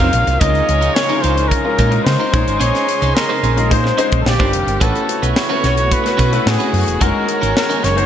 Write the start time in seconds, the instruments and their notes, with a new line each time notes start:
Already playing: string section C3 F#3 A#3 F4, horn section C4 F#4 C5, flugelhorn F5
0.00 clean electric guitar F#3 C4 F4 A#4, grand piano F#3 C4 D#4 F4 A#4, kick, closed hi-hat
0.13 fingered electric bass A#1, muted clean electric guitar stroke, closed hi-hat
0.27 fingered electric bass C2, muted clean electric guitar stroke, closed hi-hat
0.40 fingered electric bass C#2, string section C#3 F3 D#4, clean electric guitar G#3 D#4 F4 A#4, grand piano G#3 C#4 D#4 F4 A#4, horn section G#4 A#4 C#5, flugelhorn D#5, kick, closed hi-hat
0.55 closed hi-hat
0.68 fingered electric bass C#2, muted clean electric guitar stroke, closed hi-hat
0.81 clean electric guitar G#3 D#4 F4 A#4, closed hi-hat
0.95 flugelhorn C#5, muted clean electric guitar stroke, snare
1.09 grand piano G#3 C#4 D#4 E4 A#4, clean electric guitar G#3 D#4 F4 A#4
1.16 grand piano F4
1.21 fingered electric bass C#2, clean electric guitar G#3 D#4 F4 A#4, flugelhorn C5, closed hi-hat
1.36 muted clean electric guitar stroke, closed hi-hat
1.48 flugelhorn A#4, muted clean electric guitar stroke, kick, closed hi-hat
1.64 grand piano G#3 C#4 D#4 F4 A#4, muted clean electric guitar stroke
1.78 fingered electric bass A#2, clean electric guitar G#3 D#4 F4 A#4, kick, closed hi-hat
1.91 grand piano G#3 C#4 D#4 F4 A#4, muted clean electric guitar stroke, closed hi-hat
2.04 fingered electric bass C#3, flugelhorn C5, muted clean electric guitar stroke, snare
2.20 clean electric guitar G#3 D#4 F4 A#4
2.32 fingered electric bass A#1, string section C#3 G#3, grand piano G#3 C#4 D#4 F4 C#5, horn section G#4 D#5 C6, kick, closed hi-hat
2.46 fingered electric bass G#1, muted clean electric guitar stroke, closed hi-hat
2.60 fingered electric bass A#1, clean electric guitar C#4 D#4 G#4 C5, flugelhorn C#5, closed hi-hat
2.75 snare, closed hi-hat
2.88 muted clean electric guitar stroke, closed hi-hat
3.02 fingered electric bass C2, clean electric guitar C#4 D#4 G#4 C5, closed hi-hat
3.15 flugelhorn A#4, muted clean electric guitar stroke, snare
3.29 clean electric guitar C#4 D#4 G#4 C5
3.43 fingered electric bass A#1, clean electric guitar C#4 D#4 G#4 C5, closed hi-hat
3.56 grand piano G#3 C#4 D#4 F4 G#4, muted clean electric guitar stroke, closed hi-hat
3.70 fingered electric bass A#2, grand piano G#3 C#4 D#4 F4 C5, flugelhorn C5, muted clean electric guitar stroke, kick, closed hi-hat
3.84 muted clean electric guitar stroke, snare
3.98 grand piano G#3 C#4 D#4 F4 C5, clean electric guitar C#4 D#4 G#4 C5, closed hi-hat
4.11 fingered electric bass A#1, muted clean electric guitar stroke, kick, closed hi-hat
4.21 flugelhorn A4, muted clean electric guitar stroke
4.26 fingered electric bass A#1, string section D3 A#3 G4, horn section F4 G4 D5, flugelhorn G4, snare
4.39 fingered electric bass G1, grand piano G3 C4 D4 F4 A#4, clean electric guitar A#3 D4 G4 C5, kick
4.53 fingered electric bass F1, muted clean electric guitar stroke, closed hi-hat
4.67 fingered electric bass G1, muted clean electric guitar stroke, closed hi-hat
4.80 fingered electric bass A1, string section C#3 A3 B3 F#4, clean electric guitar A3 C#4 F#4 B4, grand piano A3 C#4 E4 F#4 B4, horn section E4 F#4 C#5, flugelhorn A4, kick, closed hi-hat
4.95 closed hi-hat
5.08 muted clean electric guitar stroke, closed hi-hat
5.22 fingered electric bass B1, clean electric guitar A3 C#4 F#4 B4, closed hi-hat
5.36 muted clean electric guitar stroke, snare
5.49 grand piano A3 C#4 E4 F#4 B4, clean electric guitar A3 C#4 F#4 B4
5.63 fingered electric bass B1, clean electric guitar A3 C#4 F#4 B4, flugelhorn C#5, snare, closed hi-hat
5.77 muted clean electric guitar stroke, closed hi-hat
5.91 flugelhorn B4, muted clean electric guitar stroke, kick, closed hi-hat
6.04 grand piano A3 C#4 E4 F#4 B4, muted clean electric guitar stroke, snare, closed hi-hat
6.17 fingered electric bass B2, clean electric guitar A3 C#4 F#4 B4, kick, closed hi-hat
6.31 grand piano A3 C#4 E4 F#4 B4, muted clean electric guitar stroke, closed hi-hat
6.45 fingered electric bass A2, flugelhorn G#4, muted clean electric guitar stroke, snare
6.59 clean electric guitar A3 C#4 F#4 B4, closed hi-hat
6.73 fingered electric bass F#2, muted clean electric guitar stroke, open hi-hat
6.87 fingered electric bass E1, muted clean electric guitar stroke, closed hi-hat
7.01 fingered electric bass F#1, string section D#3 G#3 A#3, clean electric guitar G#3 C#4 D#4 A#4, grand piano G#3 C#4 D#4 F#4 A#4, horn section G#4 A#4 C#5, flugelhorn A#4, kick, closed hi-hat
7.28 muted clean electric guitar stroke, closed hi-hat
7.41 fingered electric bass G#1, clean electric guitar G#3 C#4 D#4 A#4, closed hi-hat
7.55 flugelhorn A#4, muted clean electric guitar stroke, snare
7.69 clean electric guitar G#3 C#4 D#4 A#4, closed hi-hat
7.82 fingered electric bass F#1, clean electric guitar G#3 C#4 D#4 A#4, flugelhorn C#5, snare, closed hi-hat
7.96 grand piano G#3 C#4 D#4 F#4 C5, muted clean electric guitar stroke, closed hi-hat